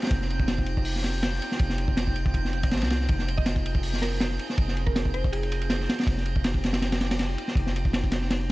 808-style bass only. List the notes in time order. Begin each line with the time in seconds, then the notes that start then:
0.11 F1
1.60 F1
2.72 G#1
2.82 C2
3.09 F1
4.58 F1
6.07 F1
7.56 F1